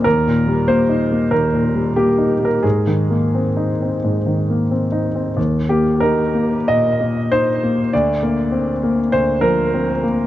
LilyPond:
<<
  \new Staff \with { instrumentName = "Grand piano" } { \time 4/4 \key ees \major \tempo 4 = 94 bes'4 c''4 bes'4 g'8. bes'16 | aes'2. r4 | r8 g'8 bes'4 ees''4 c''4 | d''2 c''8 bes'4 r8 | }
  \new Staff \with { instrumentName = "Grand piano" } { \time 4/4 \key ees \major \tuplet 3/2 { ees,8 bes,8 g8 bes8 ees'8 bes8 ees,8 bes,8 g8 bes8 ees'8 bes8 } | \tuplet 3/2 { aes,8 ees8 bes8 c'8 ees'8 c'8 aes,8 ees8 bes8 c'8 ees'8 c'8 } | ees,8 bes8 ees'8 bes8 bes,8 bes8 ees'8 bes8 | d,8 bes8 c'8 bes8 d,8 f8 c'8 bes8 | }
>>